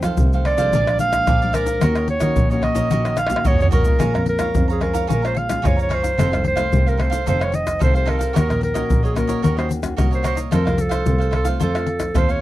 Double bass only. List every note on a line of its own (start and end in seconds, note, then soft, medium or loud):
0.03 0.16 F3 medium
0.19 0.54 C2 medium
0.58 0.70 C2 medium
0.74 1.20 A#1 medium
1.28 1.74 A#1 medium
1.82 2.17 D#2 medium
2.21 2.34 D#3 medium
2.37 2.72 A#1 loud
2.76 2.89 A#1 medium
2.92 3.38 A#1 medium
3.46 3.71 G#1 medium
3.73 3.97 A#1 medium
4.00 4.12 A#1 medium
4.15 4.49 F2 medium
4.55 5.01 F2 loud
5.10 5.56 A#1 medium
5.64 6.10 F#1 medium
6.19 6.30 F1 medium
6.32 6.67 C2 medium
6.73 7.19 C2 loud
7.28 7.73 F1 medium
7.82 8.28 C2 medium
8.36 8.47 D#2 loud
8.50 8.84 A#1 medium
8.91 9.36 A#1 loud
9.44 9.90 D#2 medium
9.98 10.44 C2 medium
10.52 10.64 F2 medium
10.66 11.01 C2 medium
11.06 11.52 C2 loud
11.60 12.07 F2 medium
12.15 12.41 D#2 medium